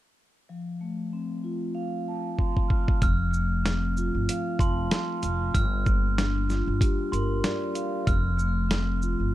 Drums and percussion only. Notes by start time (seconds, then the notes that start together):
2.39 kick
2.57 kick
2.70 kick
2.88 kick
3.02 kick, closed hi-hat
3.34 shaker
3.66 snare, closed hi-hat
3.97 shaker
4.29 closed hi-hat
4.59 kick, closed hi-hat, shaker
4.91 snare, closed hi-hat
5.23 closed hi-hat, shaker
5.55 kick, closed hi-hat
5.86 kick, shaker
6.18 snare, closed hi-hat
6.50 snare, shaker
6.81 kick, closed hi-hat
7.13 closed hi-hat, shaker
7.44 snare, closed hi-hat
7.75 closed hi-hat, shaker
8.07 kick, closed hi-hat
8.39 shaker
8.71 snare, closed hi-hat
9.02 shaker